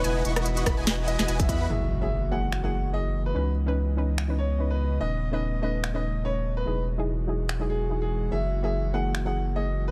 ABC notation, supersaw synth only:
X:1
M:4/4
L:1/16
Q:"Swing 16ths" 1/4=145
K:F#mix
V:1 name="Supersaw synth"
[EBdfg]2 [EBdfc']4 [EBdfb] [EBdfg] [EBdfg]3 [EBdfg] [EBdfg]2 [EBdfb]2 | z16 | z16 | z16 |
z16 | z16 |]